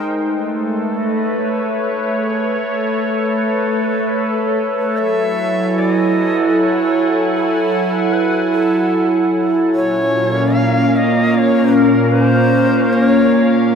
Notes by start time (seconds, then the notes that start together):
Already playing: G#3 D#4 A#4 C5 G5
0.16 A3 B4
0.25 A4
0.56 B4
0.71 C#5
0.99 D#5
1.39 C#5
1.80 B4
2.19 G#4
2.58 A4
3.38 B4
4.19 A4
4.79 B4
4.95 F#3
4.99 E5
5.07 E4
5.21 G#5
5.78 D5
5.92 D#5 F#5
6.56 C#5 D#5
7.34 A4
8.12 B4
8.52 A4
9.71 A#2
9.75 C#5
9.79 C#4
9.88 F5
9.94 A#3
10.02 A#4
10.55 F5
10.96 D#5
11.34 C#5 D#5
11.74 A#4
12.11 C5
12.93 C#5